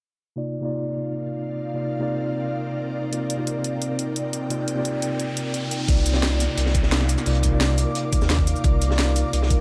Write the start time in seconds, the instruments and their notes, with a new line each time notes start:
0.36 tine electric piano C3 A#3 D#4 F4 D5, ambient pad C4 D#4 A#4 D5 F5
0.61 tine electric piano C3 A#3 D#4 F4 D5
1.74 tine electric piano C3 A#3 D#4 F4 D5
1.99 tine electric piano C3 A#3 D#4 F4
2.03 tine electric piano D5
3.12 tine electric piano C3 A#3 D#4 F4 D5, ambient pad G5, closed hi-hat, riser
3.30 closed hi-hat
3.37 tine electric piano C3 A#3 D#4 F4 D5
3.47 closed hi-hat
3.64 closed hi-hat
3.82 closed hi-hat
3.99 closed hi-hat
4.16 closed hi-hat
4.33 closed hi-hat
4.50 tine electric piano C3 A#3 D#4 F4 D5, closed hi-hat
4.68 closed hi-hat
4.75 tine electric piano C3 A#3 D#4 F4 D5
4.85 closed hi-hat
5.02 closed hi-hat
5.20 closed hi-hat
5.37 closed hi-hat
5.54 closed hi-hat
5.71 closed hi-hat
5.88 sub bass C2, tine electric piano C3 A#3 D#4 F4 D5, ambient pad D#4 A#4 F5 D6, kick, closed hi-hat, downlifter
6.06 closed hi-hat, shaker
6.13 tine electric piano C3 A#3 D#4 F4 D5, snare
6.22 snare, closed hi-hat
6.40 snare, closed hi-hat, shaker
6.57 sub bass C2, closed hi-hat
6.66 snare
6.74 kick, closed hi-hat, shaker
6.83 snare
6.91 snare, closed hi-hat
7.01 snare
7.09 closed hi-hat, shaker
7.18 snare, shaker
7.25 sub bass C2, tine electric piano C3 A#3 D#4 F4 D5, closed hi-hat, open hi-hat
7.35 closed hi-hat
7.43 kick, closed hi-hat, shaker
7.51 tine electric piano C3 A#3 D#4 F4
7.55 tine electric piano D5
7.60 snare, closed hi-hat
7.78 closed hi-hat, shaker
7.95 closed hi-hat
8.13 kick, closed hi-hat, shaker
8.21 sub bass D#2, snare, shaker
8.30 snare, closed hi-hat
8.39 kick
8.47 closed hi-hat, shaker
8.56 shaker
8.63 sub bass C2, tine electric piano C3 A#3 D#4 F4 D5, kick, closed hi-hat
8.82 closed hi-hat, shaker
8.88 tine electric piano C3 A#3 D#4 F4 D5, snare
8.98 snare, closed hi-hat
9.16 closed hi-hat, shaker
9.33 sub bass C2, closed hi-hat
9.42 snare
9.50 kick, closed hi-hat, shaker